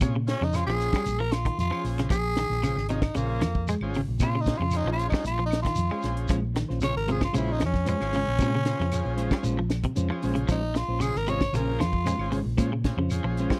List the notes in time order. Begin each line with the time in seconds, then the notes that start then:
0.01 A#2 C3 C#4 F4 G#4 C#5, kick, closed hi-hat, claves, shekere
0.16 C#3
0.27 C#4 F4 G#4 C#5, snare, closed hi-hat, shekere
0.41 F2 C#3 D#4, snare
0.53 C#4 F4 G#4 C5, snare, closed hi-hat, claves, shekere
0.66 A#1 F3 G#4, snare
0.80 closed hi-hat, shekere
0.93 G3, kick, snare, claves
1.06 A#1, closed hi-hat, shekere
1.19 F3 A#4
1.32 F4, snare, closed hi-hat, claves, shekere
1.45 D#3, kick, closed hi-hat
1.58 F2 F4, closed hi-hat, shekere
1.71 F3 C#4 F4 G#4 C5, muted fingered electric bass stroke, claves
1.84 A#1, open hi-hat, shekere
1.98 C#3, snare, closed hi-hat
2.10 A#1 F3 G#4, kick, closed hi-hat, claves, shekere
2.36 D#3, snare, closed hi-hat, shekere
2.50 A#1, snare
2.63 C#3 C#4 F4 G#4 C5, closed hi-hat, claves, shekere
2.76 G#1, snare
2.88 C3 C#4 D#4 F4 G#4 D#5, closed hi-hat, shekere
3.02 D#4, kick, snare, claves
3.14 A#1 C#3 A#3 C#4 F4 G#4 C5, closed hi-hat, shekere
3.41 F2 F3, snare, closed hi-hat, claves, shekere
3.55 kick
3.68 G#3 G#4 C5, closed hi-hat, shekere
3.81 G#1 C#4 F4 G#4 C5, claves
3.94 C#3, open hi-hat, shekere
4.08 A#1
4.19 A#2 C3 C#4 F4 G#4 C5, kick, closed hi-hat, claves, shekere
4.35 C#3
4.41 D#4
4.46 C#4 F4 G#4 C5, kick, snare, closed hi-hat, shekere
4.58 F2 F4
4.62 C#3
4.71 C#4 F4 G#4 C5, closed hi-hat, claves, shekere
4.76 D#4
4.84 A#1 F3
4.92 F4
4.99 closed hi-hat, shekere
5.09 D#4, kick, claves
5.14 G3, snare
5.25 A#1 F4, closed hi-hat, shekere
5.39 F3
5.46 D#4
5.51 snare, closed hi-hat, claves, shekere
5.62 D#3 F4, kick, snare, closed hi-hat
5.75 F2, closed hi-hat, shekere
5.91 G#3 C#4 F4 G#4 C5, muted fingered electric bass stroke, claves
6.02 A#1, snare, closed hi-hat, shekere
6.17 closed hi-hat
6.28 A#1 F3 G#3 C#4 F4 C5, kick, closed hi-hat, claves, shekere
6.42 muted clean electric guitar stroke
6.54 D#3, muted clean electric guitar stroke, snare, closed hi-hat, shekere
6.69 A#1 C#4 F4 C5, snare
6.81 C#3 C#4 F4 G#4 C5 C#5, muted clean electric guitar stroke, snare, closed hi-hat, claves, shekere
6.94 G#1 A#4, muted clean electric guitar stroke
7.07 C3 G#3 C#4 F4 G#4 C5, closed hi-hat, shekere
7.11 G#4
7.21 F4, kick, snare, claves
7.33 A#1 C#3 G#3 C#4 F4 G#4 C5, closed hi-hat, shekere
7.37 E4
7.52 D#4
7.60 F2 F3, muted clean electric guitar stroke, snare, closed hi-hat, claves, shekere
7.66 C#4
7.73 muted clean electric guitar stroke, kick, snare
7.85 G#3 C#4 F4 G#4 C5, closed hi-hat, shekere
8.00 G#1 C#4 F4 G#4 C5, muted clean electric guitar stroke, snare, claves
8.13 C#3 G#3 C#4 F4, open hi-hat, shekere
8.27 A#1, muted clean electric guitar stroke
8.38 A#2 G#3 C#4 F4 G#4 C5, kick, closed hi-hat, claves, shekere
8.42 C3
8.53 C#3, muted clean electric guitar stroke
8.65 C#4 F4 G#4 C5, muted clean electric guitar stroke, snare, closed hi-hat, shekere
8.79 F2 C#3 C#4 F4 C5, snare
8.91 C#4 F4 G#4 C5, muted clean electric guitar stroke, closed hi-hat, claves, shekere
9.04 A#1, muted clean electric guitar stroke
9.16 G#3 C#4 F4 C5, closed hi-hat, shekere
9.31 G3, kick, snare, claves
9.43 A#1 G#3 C#4 F4 C5, closed hi-hat, shekere
9.59 F3
9.69 muted clean electric guitar stroke, snare, closed hi-hat, claves, shekere
9.83 C3, muted clean electric guitar stroke, kick, closed hi-hat
9.96 F2 G#3 C#4 F4 C5, closed hi-hat, shekere
10.10 F3 C#4 F4 G#4 C5, muted fingered electric bass stroke, claves
10.22 A#1 G#3 C#4 C5, open hi-hat, shekere
10.35 C#3, muted clean electric guitar stroke, closed hi-hat
10.48 A#1 F3 G#3 C#4 D#4 F4 C5, kick, closed hi-hat, claves, shekere
10.63 muted clean electric guitar stroke
10.75 F4, muted clean electric guitar stroke, snare, closed hi-hat, shekere
10.88 A#1 C#4 F4 C5
11.00 C#3 C#4 F4 G#4 C5, muted clean electric guitar stroke, closed hi-hat, claves, shekere
11.15 G#1 A#4, muted clean electric guitar stroke, snare
11.27 C3 G#3 C#4 F4 G#4 C5 C#5 D#5, closed hi-hat, shekere
11.41 kick, snare, claves
11.53 A#1 C#3 C#4 F4 G#4 A#4 C5, muted clean electric guitar stroke, closed hi-hat, shekere
11.79 F2 F3 F4, muted clean electric guitar stroke, snare, closed hi-hat, claves, shekere
11.92 muted clean electric guitar stroke, kick
12.05 G#3 C#4 F4 G#4 C5, snare, closed hi-hat, shekere
12.18 G#1 C#4 F4 G#4 C5, muted clean electric guitar stroke, claves
12.32 C#3 G#3 C#4 C5, open hi-hat, shekere
12.44 A#1, muted clean electric guitar stroke
12.57 A#2 G#3 C#4 F4 G#4 C5, kick, closed hi-hat, claves, shekere
12.72 C#3, muted clean electric guitar stroke
12.84 C#4 F4 G#4 C5, muted clean electric guitar stroke, kick, snare, closed hi-hat, shekere
12.97 F2 C#3 C#4 F4 C5
13.10 C#4 F4 G#4 C5, muted clean electric guitar stroke, closed hi-hat, claves, shekere
13.24 A#1 F3, muted clean electric guitar stroke
13.37 G#3 C#4 F4 C5, closed hi-hat, shekere
13.50 G3, kick, snare, claves